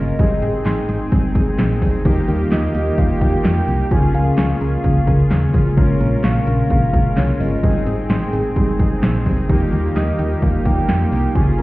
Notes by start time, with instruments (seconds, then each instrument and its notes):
Already playing: fm bass G1, synth arpeggio sound C#3, analog synth pad C#3 G#3 A#3 F4, analog polysynth C#4 F4 A#4, soft synth lead D#5
0.19 fm bass G#1, analog synth pad D#3 C4 G5, synth arpeggio sound G3, analog polysynth C4 D#4 G#4, kick, closed hi-hat
0.42 fm bass G#1, synth arpeggio sound G#4, closed hi-hat
0.66 fm bass G#1, synth arpeggio sound C6, snare, clap, closed hi-hat
0.89 fm bass G#1, synth arpeggio sound G#4, closed hi-hat
1.12 fm bass G#1, synth arpeggio sound G3, kick, closed hi-hat
1.35 fm bass G#1, synth arpeggio sound G#4, kick, closed hi-hat
1.59 fm bass A#1, synth arpeggio sound C4, snare, clap, closed hi-hat
1.82 fm bass C#2, synth arpeggio sound G3, kick, open hi-hat
2.05 fm bass D#2, synth arpeggio sound F3, analog synth pad G3 A#3 F4, analog polysynth A#3 D#4 G4, kick, closed hi-hat
2.28 fm bass D#2, synth arpeggio sound G4, closed hi-hat
2.52 fm bass D#2, soft synth lead D#5, synth arpeggio sound D#6, snare, clap, closed hi-hat
2.75 fm bass D#2, synth arpeggio sound G4, closed hi-hat
2.98 fm bass D#2, synth arpeggio sound F3, soft synth lead F5, kick, closed hi-hat
3.21 fm bass D#2, synth arpeggio sound G4, soft synth lead G5, kick, closed hi-hat
3.44 fm bass F2, synth arpeggio sound D#4, snare, clap, closed hi-hat
3.68 fm bass C2, synth arpeggio sound F3, open hi-hat
3.91 fm bass C#2, analog synth pad C#3 G#3 F4, synth arpeggio sound F3, analog polysynth C#4 F4 G#4, soft synth lead G#5, kick, closed hi-hat
4.14 fm bass C#2, synth arpeggio sound A#4, soft synth lead F5, closed hi-hat
4.38 fm bass C#2, synth arpeggio sound C#6, snare, clap, closed hi-hat
4.61 fm bass C#2, synth arpeggio sound A#4, open hi-hat
4.84 fm bass C#2, synth arpeggio sound F3, kick, closed hi-hat
5.07 fm bass C#2, synth arpeggio sound A#4, kick, closed hi-hat
5.31 fm bass D#2, synth arpeggio sound C#4, snare, clap, closed hi-hat
5.54 fm bass G#1, synth arpeggio sound F3, kick, open hi-hat
5.77 fm bass A#1, synth arpeggio sound G#3, analog synth pad G#3, analog polysynth C#4 F4 A#4, soft synth lead C#5, kick, closed hi-hat
6.00 fm bass A#1, synth arpeggio sound A#4, closed hi-hat
6.24 fm bass A#1, soft synth lead F5, synth arpeggio sound C#6, snare, clap, closed hi-hat
6.47 fm bass A#1, synth arpeggio sound A#4, closed hi-hat
6.70 fm bass A#1, synth arpeggio sound G#3, soft synth lead F5, kick, closed hi-hat
6.93 fm bass A#1, synth arpeggio sound A#4, kick, closed hi-hat
7.17 fm bass C2, synth arpeggio sound C#4, soft synth lead C#5, snare, clap, closed hi-hat
7.40 fm bass G1, synth arpeggio sound G#3, soft synth lead D#5, open hi-hat
7.63 fm bass G#1, analog synth pad D#3 C4 G5, synth arpeggio sound G3, analog polysynth C4 D#4 G#4, kick, closed hi-hat
7.86 fm bass G#1, synth arpeggio sound G#4, closed hi-hat
8.10 fm bass G#1, synth arpeggio sound C6, snare, clap, closed hi-hat
8.33 fm bass G#1, synth arpeggio sound G#4, closed hi-hat
8.56 fm bass G#1, synth arpeggio sound G3, kick, closed hi-hat
8.79 fm bass G#1, synth arpeggio sound G#4, kick, closed hi-hat
9.03 fm bass A#1, synth arpeggio sound C4, snare, clap, closed hi-hat
9.26 fm bass C#2, synth arpeggio sound G3, kick, open hi-hat
9.49 fm bass D#2, synth arpeggio sound F3, analog synth pad G3 A#3 F4, analog polysynth A#3 D#4 G4, kick, closed hi-hat
9.73 fm bass D#2, synth arpeggio sound G4, closed hi-hat
9.96 fm bass D#2, soft synth lead D#5, synth arpeggio sound D#6, snare, clap, closed hi-hat
10.19 fm bass D#2, synth arpeggio sound G4, closed hi-hat
10.42 fm bass D#2, synth arpeggio sound F3, soft synth lead F5, kick, closed hi-hat
10.65 fm bass D#2, synth arpeggio sound G4, soft synth lead G5, kick, closed hi-hat
10.89 fm bass F2, synth arpeggio sound D#4, snare, clap, closed hi-hat
11.12 fm bass C2, synth arpeggio sound F3, open hi-hat
11.35 fm bass C#2, analog synth pad C#3 G#3, synth arpeggio sound F3, analog polysynth C#4 F4 G#4, soft synth lead G#5, kick, closed hi-hat
11.58 fm bass C#2, synth arpeggio sound A#4, soft synth lead A#5, closed hi-hat